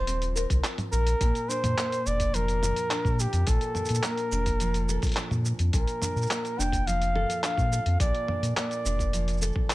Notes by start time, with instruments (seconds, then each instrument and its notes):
Already playing: sub bass D#1, nylon-string guitar F3 F4 A#4, flugelhorn C5
0.07 nylon-string guitar C4, closed hi-hat, shaker
0.22 closed hi-hat, shaker
0.36 nylon-string guitar A#4, shaker
0.50 sub bass C2, kick, closed hi-hat, shaker
0.64 nylon-string guitar F4, clap, closed hi-hat, shaker
0.78 closed hi-hat, mid tom, shaker
0.92 sub bass A#1, flugelhorn A#4, nylon-string guitar A#4, shaker
1.07 closed hi-hat, shaker
1.21 sub bass A#1, nylon-string guitar A#2, kick, closed hi-hat, shaker
1.35 closed hi-hat, shaker
1.48 nylon-string guitar D4, flugelhorn C5, shaker
1.63 sub bass A#2, closed hi-hat, mid tom, shaker
1.77 nylon-string guitar A#3, clap, closed hi-hat, shaker
1.92 closed hi-hat, shaker
2.05 sub bass F1, nylon-string guitar D4, flugelhorn D5, shaker
2.20 kick, closed hi-hat, shaker
2.34 nylon-string guitar F3, flugelhorn A#4, closed hi-hat, shaker
2.48 closed hi-hat, shaker
2.63 mid tom, shaker
2.76 closed hi-hat, shaker
2.90 nylon-string guitar D4, clap, closed hi-hat, shaker
3.05 sub bass A#2, kick, shaker
3.20 flugelhorn G4, shaker
3.33 sub bass F2, closed hi-hat, shaker
3.47 sub bass A#1, nylon-string guitar A#2, flugelhorn A4, kick, closed hi-hat, shaker
3.61 closed hi-hat, shaker
3.75 nylon-string guitar D4, mid tom, shaker
3.85 closed hi-hat, shaker
3.90 sub bass A#2, shaker
3.94 shaker
4.03 nylon-string guitar A#3, flugelhorn A#4, clap, closed hi-hat, shaker
4.17 closed hi-hat, shaker
4.32 sub bass F1, nylon-string guitar D4, shaker
4.46 kick, closed hi-hat, shaker
4.60 nylon-string guitar F3, closed hi-hat, shaker
4.74 closed hi-hat, shaker
4.89 nylon-string guitar A4, shaker
5.02 kick, closed hi-hat, shaker
5.04 closed hi-hat
5.07 closed hi-hat
5.09 closed hi-hat
5.12 closed hi-hat
5.14 clap, closed hi-hat
5.16 nylon-string guitar D4, closed hi-hat, shaker
5.31 sub bass A#2, mid tom, shaker
5.45 shaker
5.59 sub bass F2, closed hi-hat, shaker
5.73 sub bass A#1, nylon-string guitar A#2, flugelhorn A#4, kick, closed hi-hat, shaker
5.87 closed hi-hat, shaker
6.02 nylon-string guitar D4, mid tom, shaker
6.16 sub bass A#2, shaker
6.22 shaker
6.27 nylon-string guitar A#3, shaker
6.31 clap, closed hi-hat, shaker
6.45 closed hi-hat, shaker
6.58 sub bass F1, nylon-string guitar D4, flugelhorn G5, shaker
6.73 kick, closed hi-hat, shaker
6.87 nylon-string guitar F3, flugelhorn F5, closed hi-hat, shaker
7.02 closed hi-hat, shaker
7.15 nylon-string guitar A4, mid tom
7.30 closed hi-hat, shaker
7.44 nylon-string guitar D4, flugelhorn F5, clap, closed hi-hat, shaker
7.58 sub bass A#2, kick, shaker
7.72 nylon-string guitar A4, shaker
7.86 sub bass F2, closed hi-hat
8.00 sub bass A#1, nylon-string guitar A#2, flugelhorn D5, kick, closed hi-hat, shaker
8.15 closed hi-hat
8.28 nylon-string guitar D4, mid tom
8.42 sub bass A#2, closed hi-hat, shaker
8.56 nylon-string guitar A#3, flugelhorn D5, clap, closed hi-hat, shaker
8.71 closed hi-hat, shaker
8.85 sub bass F1, nylon-string guitar D4, shaker
8.99 kick, shaker
9.13 nylon-string guitar F3, closed hi-hat, shaker
9.28 closed hi-hat, shaker
9.33 shaker
9.37 shaker
9.41 nylon-string guitar A4, shaker
9.52 kick, shaker
9.70 clap, closed hi-hat, shaker